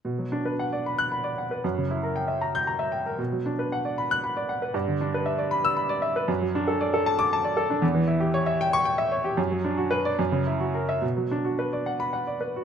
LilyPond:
\new Staff \with { instrumentName = "Grand piano" } { \time 6/8 \key b \minor \tempo 4. = 77 << { r4. r16 fis'''8 r8. | r4. r16 g'''8 r8. | r4. r16 fis'''8 r8. | r4. r16 e'''8 r8. |
r4. r16 d'''8 r8. | r4. r16 cis'''8 r8. | r4 r16 d''16 r4 r16 e''16 | r4. r16 b''8 r8. | } \\ { b,16 fis16 d'16 b'16 fis''16 d''16 b''8 b''16 d''16 fis''16 b'16 | fis,16 cis16 e'16 ais'16 g''16 e''16 ais''8 ais''16 e''16 g''16 ais'16 | b,16 fis16 d'16 b'16 fis''16 d''16 b''8 b''16 d''16 fis''16 b'16 | g,16 d16 d'16 b'16 e''16 d''16 b''8 b''16 d''16 e''16 b'16 |
fis,16 fis16 d'16 a'16 d''16 a'16 a''8 a''16 d''16 a'16 d'16 | e,16 e16 e'16 g'16 cis''16 e''16 g''8 g''16 e''16 cis''16 g'16 | fis,16 fis16 d'16 fis'16 b'8 fis,16 cis16 e'16 fis'16 ais'8 | b,16 fis16 d'16 fis'16 b'16 d''16 fis''8 fis''16 d''16 b'16 fis'16 | } >> }